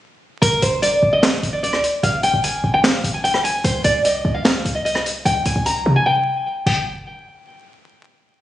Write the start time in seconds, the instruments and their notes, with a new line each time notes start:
0.42 808-style bass G1, nylon-string guitar A#4, closed hi-hat
0.62 808-style bass G1, nylon-string guitar C5, closed hi-hat
0.82 nylon-string guitar D5, closed hi-hat
1.03 808-style bass G1
1.13 nylon-string guitar D#5
1.23 nylon-string guitar D#5, snare, clap, closed hi-hat
1.43 808-style bass G1, closed hi-hat
1.53 nylon-string guitar D5
1.63 nylon-string guitar D5, closed hi-hat
1.73 808-style bass D2, cross-stick
1.84 closed hi-hat
2.03 808-style bass G1, nylon-string guitar F5, closed hi-hat
2.23 nylon-string guitar G5, closed hi-hat
2.33 808-style bass G1
2.43 nylon-string guitar G#5, closed hi-hat
2.64 808-style bass G1
2.74 nylon-string guitar G5
2.84 nylon-string guitar F5, snare, clap, closed hi-hat
3.04 808-style bass G1, closed hi-hat
3.14 nylon-string guitar G#5
3.24 nylon-string guitar G5, closed hi-hat
3.34 cross-stick
3.44 808-style bass G#1, nylon-string guitar G#5, closed hi-hat
3.64 808-style bass C2, nylon-string guitar C5, closed hi-hat
3.84 808-style bass C2, nylon-string guitar D5, closed hi-hat
4.05 nylon-string guitar D#5, closed hi-hat
4.25 808-style bass C2
4.34 nylon-string guitar F5
4.45 nylon-string guitar F5, snare, clap, closed hi-hat
4.65 808-style bass C2, closed hi-hat
4.75 nylon-string guitar D#5
4.85 nylon-string guitar D#5, closed hi-hat
4.95 cross-stick
5.06 closed hi-hat
5.25 808-style bass C2, nylon-string guitar G5, closed hi-hat
5.45 808-style bass C2, nylon-string guitar G#5, closed hi-hat
5.56 808-style bass C2
5.66 nylon-string guitar A#5, closed hi-hat
5.86 808-style bass C3
5.96 nylon-string guitar G#5
6.06 nylon-string guitar G5
6.66 808-style bass G1, nylon-string guitar G5, crash